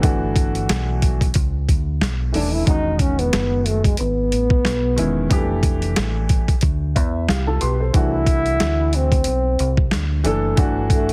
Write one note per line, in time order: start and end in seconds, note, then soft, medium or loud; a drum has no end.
0.00 0.66 G1 medium
0.00 1.22 E3 medium
0.00 1.22 A3 medium
0.00 0.34 B3 medium
0.00 1.23 D4 medium
0.00 kick loud
0.00 closed hi-hat medium
0.04 1.23 F#4 loud
0.36 kick medium
0.36 closed hi-hat medium
0.55 closed hi-hat soft
0.69 1.32 B1 medium
0.69 snare loud
0.69 closed hi-hat medium
1.02 kick medium
1.02 closed hi-hat medium
1.21 kick medium
1.21 closed hi-hat medium
1.34 1.67 C#2 medium
1.34 kick loud
1.34 closed hi-hat loud
1.69 2.00 D2 medium
1.69 kick medium
1.69 closed hi-hat medium
2.01 2.33 B1 medium
2.01 snare loud
2.01 closed hi-hat medium
2.32 2.66 D#1 medium
2.32 2.63 E3 medium
2.32 2.63 A3 medium
2.32 2.64 D4 medium
2.32 2.55 D4 medium
2.32 2.64 E4 medium
2.32 open hi-hat medium
2.54 2.67 E4 medium
2.65 3.30 E1 loud
2.65 3.85 D#3 medium
2.65 3.86 G#3 medium
2.65 3.86 C#4 medium
2.65 3.02 D#4 loud
2.65 3.87 F#4 medium
2.65 kick loud
2.65 closed hi-hat medium
2.99 3.20 C#4 loud
2.99 kick medium
2.99 closed hi-hat medium
3.19 3.68 B3 loud
3.19 closed hi-hat medium
3.33 3.96 F#1 medium
3.33 snare loud
3.33 closed hi-hat medium
3.66 3.86 A3 medium
3.66 closed hi-hat medium
3.84 3.98 G#3 medium
3.84 kick medium
3.84 closed hi-hat medium
3.97 4.31 G#1 loud
3.97 5.60 B3 loud
3.97 closed hi-hat medium
4.32 4.63 A1 medium
4.32 closed hi-hat medium
4.50 kick medium
4.65 4.97 B1 loud
4.65 snare loud
4.65 closed hi-hat medium
4.96 5.30 E1 medium
4.96 5.27 D#3 medium
4.96 5.27 G#3 medium
4.96 5.28 C#4 medium
4.96 5.28 E4 medium
4.96 closed hi-hat medium
5.30 5.93 F1 loud
5.30 6.49 E3 medium
5.30 5.38 G3 medium
5.30 6.50 D4 medium
5.30 6.51 G4 loud
5.30 kick loud
5.30 closed hi-hat medium
5.37 6.53 A3 medium
5.63 kick medium
5.63 closed hi-hat medium
5.82 closed hi-hat soft
5.96 6.46 A1 loud
5.96 snare loud
5.96 closed hi-hat medium
6.29 kick medium
6.29 closed hi-hat medium
6.48 kick medium
6.48 closed hi-hat medium
6.61 6.96 D2 loud
6.61 kick loud
6.61 closed hi-hat medium
6.96 7.27 E2 medium
6.96 7.26 E5 medium
6.96 kick medium
6.96 closed hi-hat medium
7.29 7.60 C2 loud
7.29 7.47 E4 medium
7.29 7.47 G4 medium
7.29 7.46 F5 medium
7.29 snare loud
7.29 closed hi-hat medium
7.47 7.61 F4 medium
7.47 7.61 A4 medium
7.47 7.60 A5 medium
7.61 7.93 B1 loud
7.61 7.80 G4 medium
7.61 7.79 B4 medium
7.61 7.92 C6 medium
7.61 closed hi-hat medium
7.80 8.12 A4 medium
7.80 8.12 C5 medium
7.93 8.57 C2 loud
7.93 9.13 E3 medium
7.93 9.13 A3 medium
7.93 9.14 D4 medium
7.93 8.97 E4 loud
7.93 9.14 F#4 medium
7.93 kick loud
7.93 closed hi-hat medium
8.26 kick medium
8.26 closed hi-hat medium
8.46 closed hi-hat medium
8.60 9.23 D2 medium
8.60 snare loud
8.60 closed hi-hat loud
8.93 9.93 C4 loud
8.93 closed hi-hat medium
9.12 kick medium
9.12 closed hi-hat medium
9.24 9.58 B1 loud
9.24 closed hi-hat loud
9.59 9.91 C2 loud
9.59 closed hi-hat medium
9.77 kick medium
9.91 10.24 D2 medium
9.91 snare loud
9.91 closed hi-hat medium
10.24 10.56 F#1 medium
10.24 10.54 E3 medium
10.24 10.55 A3 medium
10.24 10.55 D4 medium
10.24 10.56 A4 loud
10.24 closed hi-hat medium
10.56 11.13 G1 loud
10.56 11.13 E3 medium
10.56 11.13 A3 medium
10.56 11.13 D4 medium
10.56 11.13 F#4 loud
10.56 kick loud
10.56 closed hi-hat medium
10.90 11.13 A3 medium
10.90 kick medium
10.90 closed hi-hat medium
11.09 closed hi-hat soft